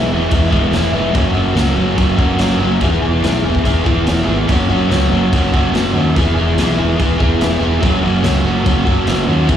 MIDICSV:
0, 0, Header, 1, 4, 480
1, 0, Start_track
1, 0, Tempo, 417537
1, 1314, Time_signature, 4, 2, 24, 8
1, 10999, End_track
2, 0, Start_track
2, 0, Title_t, "Overdriven electric guitar"
2, 0, Program_c, 0, 29
2, 0, Note_on_c, 0, 52, 99
2, 0, Note_on_c, 0, 56, 106
2, 0, Note_on_c, 0, 59, 94
2, 116, Note_on_c, 0, 64, 82
2, 130, Note_off_c, 0, 59, 0
2, 144, Note_on_c, 0, 59, 71
2, 150, Note_off_c, 0, 56, 0
2, 164, Note_on_c, 0, 56, 68
2, 326, Note_off_c, 0, 52, 0
2, 339, Note_off_c, 0, 56, 0
2, 340, Note_on_c, 0, 52, 69
2, 353, Note_on_c, 0, 56, 75
2, 362, Note_off_c, 0, 59, 0
2, 371, Note_off_c, 0, 64, 0
2, 376, Note_on_c, 0, 59, 86
2, 385, Note_on_c, 0, 64, 86
2, 558, Note_off_c, 0, 64, 0
2, 572, Note_on_c, 0, 64, 103
2, 582, Note_off_c, 0, 59, 0
2, 596, Note_off_c, 0, 56, 0
2, 596, Note_on_c, 0, 59, 88
2, 608, Note_off_c, 0, 52, 0
2, 610, Note_on_c, 0, 56, 90
2, 622, Note_on_c, 0, 52, 83
2, 809, Note_off_c, 0, 52, 0
2, 823, Note_on_c, 0, 52, 75
2, 829, Note_off_c, 0, 56, 0
2, 843, Note_on_c, 0, 56, 75
2, 849, Note_off_c, 0, 59, 0
2, 859, Note_off_c, 0, 64, 0
2, 863, Note_on_c, 0, 59, 72
2, 873, Note_on_c, 0, 64, 85
2, 1059, Note_off_c, 0, 64, 0
2, 1072, Note_on_c, 0, 64, 78
2, 1075, Note_off_c, 0, 59, 0
2, 1088, Note_on_c, 0, 59, 70
2, 1099, Note_off_c, 0, 56, 0
2, 1113, Note_on_c, 0, 56, 60
2, 1290, Note_off_c, 0, 52, 0
2, 1295, Note_on_c, 0, 54, 85
2, 1299, Note_off_c, 0, 64, 0
2, 1307, Note_off_c, 0, 59, 0
2, 1308, Note_off_c, 0, 56, 0
2, 1313, Note_on_c, 0, 58, 101
2, 1329, Note_on_c, 0, 61, 105
2, 1338, Note_on_c, 0, 66, 103
2, 1511, Note_off_c, 0, 66, 0
2, 1525, Note_on_c, 0, 66, 77
2, 1532, Note_off_c, 0, 61, 0
2, 1546, Note_on_c, 0, 61, 72
2, 1558, Note_off_c, 0, 58, 0
2, 1572, Note_on_c, 0, 58, 61
2, 1759, Note_off_c, 0, 54, 0
2, 1772, Note_off_c, 0, 58, 0
2, 1773, Note_on_c, 0, 54, 85
2, 1786, Note_on_c, 0, 58, 94
2, 1793, Note_off_c, 0, 61, 0
2, 1806, Note_off_c, 0, 66, 0
2, 1807, Note_on_c, 0, 61, 114
2, 1819, Note_on_c, 0, 66, 104
2, 1990, Note_off_c, 0, 66, 0
2, 2004, Note_on_c, 0, 66, 82
2, 2020, Note_off_c, 0, 61, 0
2, 2034, Note_on_c, 0, 61, 75
2, 2037, Note_off_c, 0, 58, 0
2, 2051, Note_on_c, 0, 58, 59
2, 2236, Note_off_c, 0, 54, 0
2, 2250, Note_on_c, 0, 54, 77
2, 2263, Note_off_c, 0, 58, 0
2, 2272, Note_off_c, 0, 61, 0
2, 2277, Note_on_c, 0, 58, 81
2, 2283, Note_off_c, 0, 66, 0
2, 2286, Note_on_c, 0, 61, 85
2, 2296, Note_on_c, 0, 66, 86
2, 2475, Note_off_c, 0, 66, 0
2, 2485, Note_off_c, 0, 61, 0
2, 2488, Note_on_c, 0, 66, 104
2, 2498, Note_on_c, 0, 61, 84
2, 2503, Note_off_c, 0, 58, 0
2, 2512, Note_off_c, 0, 54, 0
2, 2516, Note_on_c, 0, 58, 86
2, 2526, Note_on_c, 0, 54, 75
2, 2715, Note_off_c, 0, 54, 0
2, 2729, Note_on_c, 0, 54, 81
2, 2738, Note_off_c, 0, 58, 0
2, 2746, Note_off_c, 0, 61, 0
2, 2751, Note_on_c, 0, 58, 77
2, 2760, Note_on_c, 0, 61, 78
2, 2763, Note_off_c, 0, 66, 0
2, 2777, Note_on_c, 0, 66, 87
2, 2971, Note_off_c, 0, 66, 0
2, 2985, Note_on_c, 0, 66, 73
2, 2999, Note_off_c, 0, 61, 0
2, 3013, Note_on_c, 0, 61, 65
2, 3015, Note_off_c, 0, 58, 0
2, 3029, Note_on_c, 0, 58, 60
2, 3207, Note_off_c, 0, 54, 0
2, 3215, Note_off_c, 0, 66, 0
2, 3226, Note_on_c, 0, 52, 92
2, 3229, Note_off_c, 0, 61, 0
2, 3237, Note_off_c, 0, 58, 0
2, 3245, Note_on_c, 0, 59, 99
2, 3255, Note_on_c, 0, 64, 106
2, 3268, Note_on_c, 0, 68, 99
2, 3458, Note_off_c, 0, 68, 0
2, 3472, Note_on_c, 0, 68, 83
2, 3483, Note_off_c, 0, 64, 0
2, 3496, Note_off_c, 0, 59, 0
2, 3497, Note_on_c, 0, 64, 70
2, 3510, Note_on_c, 0, 59, 64
2, 3695, Note_off_c, 0, 52, 0
2, 3709, Note_on_c, 0, 52, 91
2, 3714, Note_off_c, 0, 59, 0
2, 3723, Note_off_c, 0, 64, 0
2, 3728, Note_on_c, 0, 59, 91
2, 3737, Note_on_c, 0, 64, 100
2, 3740, Note_off_c, 0, 68, 0
2, 3754, Note_on_c, 0, 68, 107
2, 3941, Note_off_c, 0, 68, 0
2, 3955, Note_on_c, 0, 68, 76
2, 3963, Note_off_c, 0, 64, 0
2, 3976, Note_on_c, 0, 64, 65
2, 3988, Note_off_c, 0, 59, 0
2, 4002, Note_on_c, 0, 59, 63
2, 4166, Note_off_c, 0, 52, 0
2, 4180, Note_on_c, 0, 52, 75
2, 4183, Note_off_c, 0, 59, 0
2, 4195, Note_off_c, 0, 64, 0
2, 4196, Note_on_c, 0, 59, 82
2, 4207, Note_off_c, 0, 68, 0
2, 4208, Note_on_c, 0, 64, 80
2, 4221, Note_on_c, 0, 68, 73
2, 4403, Note_off_c, 0, 68, 0
2, 4417, Note_on_c, 0, 68, 95
2, 4427, Note_off_c, 0, 64, 0
2, 4436, Note_off_c, 0, 59, 0
2, 4440, Note_on_c, 0, 64, 94
2, 4448, Note_off_c, 0, 52, 0
2, 4450, Note_on_c, 0, 59, 81
2, 4462, Note_on_c, 0, 52, 91
2, 4644, Note_off_c, 0, 52, 0
2, 4658, Note_on_c, 0, 52, 81
2, 4663, Note_off_c, 0, 59, 0
2, 4675, Note_off_c, 0, 64, 0
2, 4677, Note_on_c, 0, 59, 83
2, 4688, Note_off_c, 0, 68, 0
2, 4689, Note_on_c, 0, 64, 82
2, 4702, Note_on_c, 0, 68, 75
2, 4877, Note_off_c, 0, 68, 0
2, 4891, Note_on_c, 0, 68, 72
2, 4895, Note_off_c, 0, 64, 0
2, 4909, Note_on_c, 0, 64, 65
2, 4927, Note_off_c, 0, 59, 0
2, 4941, Note_on_c, 0, 59, 59
2, 5129, Note_off_c, 0, 68, 0
2, 5132, Note_off_c, 0, 52, 0
2, 5137, Note_on_c, 0, 54, 84
2, 5138, Note_off_c, 0, 64, 0
2, 5148, Note_off_c, 0, 59, 0
2, 5153, Note_on_c, 0, 58, 90
2, 5172, Note_on_c, 0, 61, 92
2, 5182, Note_on_c, 0, 66, 100
2, 5372, Note_off_c, 0, 66, 0
2, 5386, Note_on_c, 0, 66, 80
2, 5389, Note_off_c, 0, 61, 0
2, 5403, Note_on_c, 0, 61, 69
2, 5410, Note_off_c, 0, 58, 0
2, 5424, Note_on_c, 0, 58, 66
2, 5600, Note_off_c, 0, 54, 0
2, 5614, Note_on_c, 0, 54, 98
2, 5624, Note_off_c, 0, 58, 0
2, 5632, Note_off_c, 0, 61, 0
2, 5637, Note_on_c, 0, 58, 94
2, 5646, Note_on_c, 0, 61, 103
2, 5648, Note_off_c, 0, 66, 0
2, 5661, Note_on_c, 0, 66, 104
2, 5845, Note_off_c, 0, 66, 0
2, 5858, Note_on_c, 0, 66, 72
2, 5875, Note_off_c, 0, 61, 0
2, 5889, Note_on_c, 0, 61, 66
2, 5892, Note_off_c, 0, 58, 0
2, 5906, Note_on_c, 0, 58, 65
2, 6099, Note_off_c, 0, 54, 0
2, 6113, Note_on_c, 0, 54, 69
2, 6119, Note_off_c, 0, 58, 0
2, 6131, Note_off_c, 0, 61, 0
2, 6133, Note_on_c, 0, 58, 72
2, 6143, Note_off_c, 0, 66, 0
2, 6145, Note_on_c, 0, 61, 76
2, 6156, Note_on_c, 0, 66, 85
2, 6338, Note_off_c, 0, 66, 0
2, 6352, Note_on_c, 0, 66, 98
2, 6356, Note_off_c, 0, 61, 0
2, 6368, Note_off_c, 0, 58, 0
2, 6370, Note_on_c, 0, 61, 97
2, 6381, Note_off_c, 0, 54, 0
2, 6382, Note_on_c, 0, 58, 88
2, 6394, Note_on_c, 0, 54, 82
2, 6565, Note_off_c, 0, 54, 0
2, 6579, Note_on_c, 0, 54, 66
2, 6596, Note_off_c, 0, 58, 0
2, 6607, Note_off_c, 0, 61, 0
2, 6609, Note_on_c, 0, 58, 75
2, 6615, Note_off_c, 0, 66, 0
2, 6621, Note_on_c, 0, 61, 72
2, 6629, Note_on_c, 0, 66, 84
2, 6812, Note_off_c, 0, 66, 0
2, 6826, Note_on_c, 0, 66, 72
2, 6840, Note_off_c, 0, 61, 0
2, 6854, Note_on_c, 0, 61, 65
2, 6862, Note_off_c, 0, 58, 0
2, 6876, Note_on_c, 0, 58, 62
2, 7055, Note_off_c, 0, 54, 0
2, 7058, Note_off_c, 0, 66, 0
2, 7069, Note_on_c, 0, 52, 98
2, 7072, Note_off_c, 0, 61, 0
2, 7081, Note_off_c, 0, 58, 0
2, 7085, Note_on_c, 0, 59, 100
2, 7102, Note_on_c, 0, 64, 111
2, 7114, Note_on_c, 0, 68, 102
2, 7284, Note_off_c, 0, 68, 0
2, 7298, Note_on_c, 0, 68, 89
2, 7317, Note_off_c, 0, 64, 0
2, 7330, Note_on_c, 0, 64, 67
2, 7340, Note_off_c, 0, 59, 0
2, 7353, Note_on_c, 0, 59, 61
2, 7542, Note_off_c, 0, 52, 0
2, 7556, Note_on_c, 0, 52, 104
2, 7562, Note_off_c, 0, 59, 0
2, 7575, Note_off_c, 0, 64, 0
2, 7575, Note_on_c, 0, 59, 103
2, 7589, Note_off_c, 0, 68, 0
2, 7589, Note_on_c, 0, 64, 102
2, 7603, Note_on_c, 0, 68, 102
2, 7776, Note_off_c, 0, 68, 0
2, 7790, Note_on_c, 0, 68, 77
2, 7798, Note_off_c, 0, 64, 0
2, 7812, Note_on_c, 0, 64, 69
2, 7820, Note_off_c, 0, 59, 0
2, 7834, Note_on_c, 0, 59, 66
2, 8003, Note_off_c, 0, 52, 0
2, 8015, Note_off_c, 0, 59, 0
2, 8017, Note_on_c, 0, 52, 71
2, 8029, Note_on_c, 0, 59, 84
2, 8033, Note_off_c, 0, 64, 0
2, 8046, Note_on_c, 0, 64, 76
2, 8049, Note_off_c, 0, 68, 0
2, 8062, Note_on_c, 0, 68, 91
2, 8241, Note_off_c, 0, 68, 0
2, 8255, Note_on_c, 0, 68, 95
2, 8266, Note_off_c, 0, 64, 0
2, 8278, Note_off_c, 0, 59, 0
2, 8280, Note_on_c, 0, 64, 85
2, 8292, Note_on_c, 0, 59, 87
2, 8295, Note_off_c, 0, 52, 0
2, 8308, Note_on_c, 0, 52, 84
2, 8484, Note_off_c, 0, 52, 0
2, 8498, Note_on_c, 0, 52, 75
2, 8503, Note_off_c, 0, 59, 0
2, 8516, Note_off_c, 0, 64, 0
2, 8517, Note_on_c, 0, 59, 77
2, 8529, Note_off_c, 0, 68, 0
2, 8530, Note_on_c, 0, 64, 74
2, 8543, Note_on_c, 0, 68, 79
2, 8726, Note_off_c, 0, 68, 0
2, 8740, Note_on_c, 0, 68, 79
2, 8748, Note_off_c, 0, 64, 0
2, 8762, Note_on_c, 0, 64, 73
2, 8769, Note_off_c, 0, 59, 0
2, 8783, Note_on_c, 0, 59, 61
2, 8968, Note_off_c, 0, 52, 0
2, 8972, Note_on_c, 0, 54, 106
2, 8975, Note_off_c, 0, 68, 0
2, 8986, Note_off_c, 0, 59, 0
2, 8986, Note_off_c, 0, 64, 0
2, 8991, Note_on_c, 0, 58, 97
2, 9000, Note_on_c, 0, 61, 98
2, 9023, Note_on_c, 0, 66, 107
2, 9200, Note_off_c, 0, 66, 0
2, 9214, Note_on_c, 0, 66, 81
2, 9230, Note_off_c, 0, 61, 0
2, 9244, Note_on_c, 0, 61, 72
2, 9245, Note_off_c, 0, 58, 0
2, 9259, Note_on_c, 0, 58, 64
2, 9439, Note_off_c, 0, 54, 0
2, 9452, Note_on_c, 0, 54, 106
2, 9455, Note_off_c, 0, 58, 0
2, 9466, Note_off_c, 0, 61, 0
2, 9469, Note_on_c, 0, 58, 111
2, 9480, Note_on_c, 0, 61, 109
2, 9482, Note_off_c, 0, 66, 0
2, 9496, Note_on_c, 0, 66, 115
2, 9688, Note_off_c, 0, 66, 0
2, 9701, Note_on_c, 0, 66, 76
2, 9716, Note_off_c, 0, 61, 0
2, 9729, Note_on_c, 0, 61, 74
2, 9732, Note_off_c, 0, 58, 0
2, 9745, Note_on_c, 0, 58, 69
2, 9911, Note_off_c, 0, 54, 0
2, 9924, Note_on_c, 0, 54, 73
2, 9926, Note_off_c, 0, 58, 0
2, 9939, Note_on_c, 0, 58, 84
2, 9946, Note_off_c, 0, 61, 0
2, 9955, Note_off_c, 0, 66, 0
2, 9960, Note_on_c, 0, 61, 75
2, 9969, Note_on_c, 0, 66, 82
2, 10161, Note_off_c, 0, 66, 0
2, 10174, Note_on_c, 0, 66, 111
2, 10181, Note_off_c, 0, 61, 0
2, 10195, Note_on_c, 0, 61, 93
2, 10198, Note_off_c, 0, 58, 0
2, 10210, Note_off_c, 0, 54, 0
2, 10211, Note_on_c, 0, 58, 91
2, 10224, Note_on_c, 0, 54, 79
2, 10394, Note_off_c, 0, 54, 0
2, 10405, Note_off_c, 0, 58, 0
2, 10408, Note_on_c, 0, 54, 75
2, 10419, Note_on_c, 0, 58, 88
2, 10427, Note_off_c, 0, 61, 0
2, 10440, Note_on_c, 0, 61, 83
2, 10441, Note_off_c, 0, 66, 0
2, 10455, Note_on_c, 0, 66, 86
2, 10630, Note_off_c, 0, 66, 0
2, 10643, Note_on_c, 0, 66, 82
2, 10652, Note_off_c, 0, 61, 0
2, 10666, Note_on_c, 0, 61, 69
2, 10679, Note_off_c, 0, 58, 0
2, 10692, Note_on_c, 0, 58, 63
2, 10878, Note_off_c, 0, 54, 0
2, 10882, Note_on_c, 0, 52, 95
2, 10886, Note_off_c, 0, 66, 0
2, 10897, Note_off_c, 0, 58, 0
2, 10897, Note_off_c, 0, 61, 0
2, 10902, Note_on_c, 0, 59, 96
2, 10917, Note_on_c, 0, 64, 110
2, 10930, Note_on_c, 0, 68, 96
2, 10999, Note_off_c, 0, 52, 0
2, 10999, Note_off_c, 0, 59, 0
2, 10999, Note_off_c, 0, 64, 0
2, 10999, Note_off_c, 0, 68, 0
2, 10999, End_track
3, 0, Start_track
3, 0, Title_t, "Fingered electric bass"
3, 0, Program_c, 1, 33
3, 110, Note_on_c, 1, 28, 90
3, 315, Note_off_c, 1, 28, 0
3, 363, Note_on_c, 1, 28, 99
3, 562, Note_off_c, 1, 28, 0
3, 608, Note_on_c, 1, 28, 94
3, 805, Note_off_c, 1, 28, 0
3, 812, Note_on_c, 1, 28, 103
3, 1024, Note_off_c, 1, 28, 0
3, 1061, Note_on_c, 1, 29, 87
3, 1269, Note_off_c, 1, 29, 0
3, 1321, Note_on_c, 1, 30, 99
3, 1520, Note_off_c, 1, 30, 0
3, 1541, Note_on_c, 1, 30, 98
3, 1749, Note_off_c, 1, 30, 0
3, 1778, Note_on_c, 1, 37, 92
3, 1987, Note_off_c, 1, 37, 0
3, 2024, Note_on_c, 1, 30, 99
3, 2230, Note_off_c, 1, 30, 0
3, 2270, Note_on_c, 1, 30, 88
3, 2474, Note_off_c, 1, 30, 0
3, 2512, Note_on_c, 1, 30, 94
3, 2715, Note_off_c, 1, 30, 0
3, 2740, Note_on_c, 1, 30, 101
3, 2948, Note_off_c, 1, 30, 0
3, 2982, Note_on_c, 1, 30, 87
3, 3189, Note_off_c, 1, 30, 0
3, 3237, Note_on_c, 1, 28, 98
3, 3438, Note_off_c, 1, 28, 0
3, 3469, Note_on_c, 1, 28, 91
3, 3674, Note_off_c, 1, 28, 0
3, 3697, Note_on_c, 1, 35, 89
3, 3907, Note_off_c, 1, 35, 0
3, 3941, Note_on_c, 1, 28, 97
3, 4149, Note_off_c, 1, 28, 0
3, 4201, Note_on_c, 1, 28, 94
3, 4401, Note_off_c, 1, 28, 0
3, 4433, Note_on_c, 1, 28, 89
3, 4636, Note_off_c, 1, 28, 0
3, 4662, Note_on_c, 1, 28, 103
3, 4870, Note_off_c, 1, 28, 0
3, 4904, Note_on_c, 1, 32, 85
3, 5111, Note_off_c, 1, 32, 0
3, 5160, Note_on_c, 1, 30, 92
3, 5360, Note_off_c, 1, 30, 0
3, 5388, Note_on_c, 1, 30, 88
3, 5594, Note_off_c, 1, 30, 0
3, 5638, Note_on_c, 1, 37, 91
3, 5840, Note_off_c, 1, 37, 0
3, 5879, Note_on_c, 1, 30, 87
3, 6081, Note_off_c, 1, 30, 0
3, 6124, Note_on_c, 1, 30, 94
3, 6323, Note_off_c, 1, 30, 0
3, 6365, Note_on_c, 1, 30, 89
3, 6565, Note_off_c, 1, 30, 0
3, 6589, Note_on_c, 1, 30, 98
3, 6795, Note_off_c, 1, 30, 0
3, 6822, Note_on_c, 1, 39, 88
3, 7031, Note_off_c, 1, 39, 0
3, 7082, Note_on_c, 1, 28, 99
3, 7283, Note_off_c, 1, 28, 0
3, 7318, Note_on_c, 1, 28, 90
3, 7521, Note_off_c, 1, 28, 0
3, 7547, Note_on_c, 1, 35, 92
3, 7755, Note_off_c, 1, 35, 0
3, 7790, Note_on_c, 1, 28, 92
3, 7996, Note_off_c, 1, 28, 0
3, 8045, Note_on_c, 1, 28, 95
3, 8245, Note_off_c, 1, 28, 0
3, 8279, Note_on_c, 1, 28, 93
3, 8482, Note_off_c, 1, 28, 0
3, 8509, Note_on_c, 1, 28, 100
3, 8716, Note_off_c, 1, 28, 0
3, 8744, Note_on_c, 1, 28, 87
3, 8953, Note_off_c, 1, 28, 0
3, 8999, Note_on_c, 1, 30, 101
3, 9201, Note_off_c, 1, 30, 0
3, 9223, Note_on_c, 1, 30, 96
3, 9432, Note_off_c, 1, 30, 0
3, 9464, Note_on_c, 1, 37, 91
3, 9673, Note_off_c, 1, 37, 0
3, 9690, Note_on_c, 1, 30, 99
3, 9904, Note_off_c, 1, 30, 0
3, 9954, Note_on_c, 1, 30, 94
3, 10158, Note_off_c, 1, 30, 0
3, 10199, Note_on_c, 1, 30, 93
3, 10401, Note_off_c, 1, 30, 0
3, 10422, Note_on_c, 1, 30, 101
3, 10630, Note_off_c, 1, 30, 0
3, 10657, Note_on_c, 1, 39, 90
3, 10868, Note_off_c, 1, 39, 0
3, 10909, Note_on_c, 1, 28, 99
3, 10999, Note_off_c, 1, 28, 0
3, 10999, End_track
4, 0, Start_track
4, 0, Title_t, "Drums"
4, 358, Note_on_c, 9, 49, 70
4, 364, Note_on_c, 9, 36, 116
4, 472, Note_off_c, 9, 49, 0
4, 479, Note_off_c, 9, 36, 0
4, 604, Note_on_c, 9, 36, 90
4, 719, Note_off_c, 9, 36, 0
4, 841, Note_on_c, 9, 49, 65
4, 851, Note_on_c, 9, 38, 111
4, 956, Note_off_c, 9, 49, 0
4, 966, Note_off_c, 9, 38, 0
4, 1321, Note_on_c, 9, 36, 110
4, 1322, Note_on_c, 9, 49, 57
4, 1436, Note_off_c, 9, 36, 0
4, 1437, Note_off_c, 9, 49, 0
4, 1800, Note_on_c, 9, 49, 66
4, 1810, Note_on_c, 9, 38, 120
4, 1915, Note_off_c, 9, 49, 0
4, 1925, Note_off_c, 9, 38, 0
4, 2276, Note_on_c, 9, 36, 113
4, 2278, Note_on_c, 9, 49, 61
4, 2391, Note_off_c, 9, 36, 0
4, 2393, Note_off_c, 9, 49, 0
4, 2514, Note_on_c, 9, 36, 90
4, 2629, Note_off_c, 9, 36, 0
4, 2745, Note_on_c, 9, 49, 61
4, 2755, Note_on_c, 9, 38, 113
4, 2860, Note_off_c, 9, 49, 0
4, 2870, Note_off_c, 9, 38, 0
4, 3228, Note_on_c, 9, 49, 59
4, 3233, Note_on_c, 9, 36, 102
4, 3343, Note_off_c, 9, 49, 0
4, 3348, Note_off_c, 9, 36, 0
4, 3722, Note_on_c, 9, 49, 68
4, 3732, Note_on_c, 9, 38, 127
4, 3837, Note_off_c, 9, 49, 0
4, 3847, Note_off_c, 9, 38, 0
4, 4079, Note_on_c, 9, 36, 82
4, 4194, Note_off_c, 9, 36, 0
4, 4201, Note_on_c, 9, 36, 97
4, 4208, Note_on_c, 9, 49, 69
4, 4316, Note_off_c, 9, 36, 0
4, 4323, Note_off_c, 9, 49, 0
4, 4440, Note_on_c, 9, 36, 90
4, 4555, Note_off_c, 9, 36, 0
4, 4676, Note_on_c, 9, 49, 69
4, 4686, Note_on_c, 9, 38, 120
4, 4791, Note_off_c, 9, 49, 0
4, 4801, Note_off_c, 9, 38, 0
4, 5158, Note_on_c, 9, 49, 65
4, 5163, Note_on_c, 9, 36, 110
4, 5273, Note_off_c, 9, 49, 0
4, 5278, Note_off_c, 9, 36, 0
4, 5649, Note_on_c, 9, 49, 63
4, 5660, Note_on_c, 9, 38, 116
4, 5764, Note_off_c, 9, 49, 0
4, 5775, Note_off_c, 9, 38, 0
4, 6126, Note_on_c, 9, 36, 121
4, 6130, Note_on_c, 9, 49, 61
4, 6241, Note_off_c, 9, 36, 0
4, 6245, Note_off_c, 9, 49, 0
4, 6366, Note_on_c, 9, 36, 90
4, 6481, Note_off_c, 9, 36, 0
4, 6609, Note_on_c, 9, 49, 59
4, 6619, Note_on_c, 9, 38, 110
4, 6724, Note_off_c, 9, 49, 0
4, 6734, Note_off_c, 9, 38, 0
4, 7085, Note_on_c, 9, 49, 60
4, 7086, Note_on_c, 9, 36, 107
4, 7200, Note_off_c, 9, 49, 0
4, 7201, Note_off_c, 9, 36, 0
4, 7564, Note_on_c, 9, 49, 71
4, 7574, Note_on_c, 9, 38, 120
4, 7679, Note_off_c, 9, 49, 0
4, 7689, Note_off_c, 9, 38, 0
4, 8043, Note_on_c, 9, 36, 122
4, 8045, Note_on_c, 9, 49, 68
4, 8158, Note_off_c, 9, 36, 0
4, 8160, Note_off_c, 9, 49, 0
4, 8281, Note_on_c, 9, 36, 89
4, 8396, Note_off_c, 9, 36, 0
4, 8519, Note_on_c, 9, 49, 68
4, 8529, Note_on_c, 9, 38, 117
4, 8634, Note_off_c, 9, 49, 0
4, 8644, Note_off_c, 9, 38, 0
4, 8997, Note_on_c, 9, 49, 61
4, 8999, Note_on_c, 9, 36, 109
4, 9112, Note_off_c, 9, 49, 0
4, 9114, Note_off_c, 9, 36, 0
4, 9473, Note_on_c, 9, 49, 72
4, 9483, Note_on_c, 9, 38, 119
4, 9588, Note_off_c, 9, 49, 0
4, 9598, Note_off_c, 9, 38, 0
4, 9957, Note_on_c, 9, 36, 123
4, 9960, Note_on_c, 9, 49, 63
4, 10072, Note_off_c, 9, 36, 0
4, 10075, Note_off_c, 9, 49, 0
4, 10196, Note_on_c, 9, 36, 89
4, 10311, Note_off_c, 9, 36, 0
4, 10427, Note_on_c, 9, 49, 65
4, 10437, Note_on_c, 9, 38, 109
4, 10541, Note_off_c, 9, 49, 0
4, 10552, Note_off_c, 9, 38, 0
4, 10905, Note_on_c, 9, 49, 62
4, 10911, Note_on_c, 9, 36, 110
4, 10999, Note_off_c, 9, 36, 0
4, 10999, Note_off_c, 9, 49, 0
4, 10999, End_track
0, 0, End_of_file